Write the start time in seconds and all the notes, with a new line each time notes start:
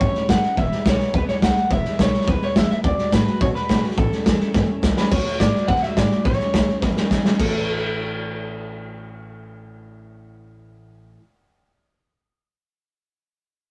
Already playing: C#5
0.01 G2 A2 E3 A3 C#4 E4, kick, snare
0.14 A3 C#4 E4, muted upright bass stroke, snare
0.29 F#2 E3 A3 C#4 E4 F#5, kick, snare, hi-hat pedal
0.42 A3 C#4 E4, muted upright bass stroke, snare
0.57 E1 E2 B2 E3 G#3 B3 E4 E5, kick, snare
0.72 E3 G#3 B3 E4, muted upright bass stroke, snare
0.85 B1 E3 G#3 B3 E4 C#5, kick, snare, hi-hat pedal
0.99 E3 G#3 B3 E4, muted upright bass stroke, snare
1.13 D2 E2 B2 E3 G#3 B3 E4 B4, kick, snare
1.28 E3 G#3 B3 E4 C#5, muted upright bass stroke, snare
1.42 C#2 E3 G#3 B3 E4 F#5, kick, snare, hi-hat pedal
1.56 E3 G#3 B3 E4, snare
1.70 E1 E2 B2 E3 G#3 B3 E4 E5, kick, snare
1.85 E3 G#3 B3 E4, muted upright bass stroke, snare
1.99 B1 E3 G#3 B3 E4 C#5, kick, snare, hi-hat pedal
2.13 E3 G#3 B3 E4, muted upright bass stroke, snare
2.21 snare
2.27 D2 E2 B2 E3 G#3 B3 E4 B4, kick, snare
2.41 E3 G#3 B3 E4 C#5, snare
2.55 E2 E3 G#3 B3 E4 E5, kick, snare, hi-hat pedal
2.69 E3 G#3 B3 E4 E5, muted upright bass stroke, snare
2.83 D2 D3 A3 D4 F#4 D5, kick, snare
2.98 A3 D4 F#4, snare
3.11 A2 D3 A3 D4 F#4 B4, kick, snare, hi-hat pedal
3.26 A3 D4 F#4, muted upright bass stroke, snare
3.40 B2 D3 A3 D4 F#4 C#5, kick, snare
3.54 A3 D4 F#4 B4, muted upright bass stroke, snare
3.68 B2 D3 A3 D4 F#4, kick, snare, hi-hat pedal
3.82 A3 D4 F#4, muted upright bass stroke, snare
3.91 snare
3.97 A1 A2 E3 A3 C#4 E4 A4, kick, snare
4.10 A3 C#4 E4, muted upright bass stroke, snare
4.24 E2 E3 A3 C#4 E4, kick, snare, hi-hat pedal
4.39 A3 C#4 E4, muted upright bass stroke, snare
4.54 G2 A2 E3 A3 C#4 E4, kick, snare
4.68 A3 C#4 E4, muted upright bass stroke
4.82 C#2 E3 A3 C#4 E4, kick, snare, hi-hat pedal
4.96 A3 C#4 E4 B4, snare
5.10 D2 D3 A3 D4 F#4 C#5, kick, snare, crash
5.19 snare
5.26 A3 D4 F#4, snare
5.39 A2 D3 A3 D4 D5, kick, snare, hi-hat pedal
5.53 A3 D4 F#4, muted upright bass stroke, snare
5.67 F#2 D3 A3 D4 F#4 F#5, kick, snare
5.76 snare
5.82 A3 D4 F#4 E5, muted upright bass stroke, snare
5.95 A2 D3 A3 D4 F#4 D5, kick, snare, hi-hat pedal
6.11 A3 D4 F#4, muted upright bass stroke, snare
6.25 A1 A2 E3 A3 C#4 E4 C#5, kick, snare
6.32 snare
6.39 A3 C#4 E4, muted upright bass stroke, snare
6.54 C#2 E3 A3 C#4 E4, kick, snare, hi-hat pedal
6.68 A3 C#4 E4, snare
6.82 E2 A2 E3 A3 C#4 E4 B4, kick, snare
6.97 A3 C#4 E4, muted upright bass stroke, snare
7.10 E3 A3 C#4 E4, kick, snare, hi-hat pedal
7.25 C#2 A3 C#4 E4, snare
7.37 A1 A2 E3 A4, kick, crash
7.43 A3 C#4
7.48 E4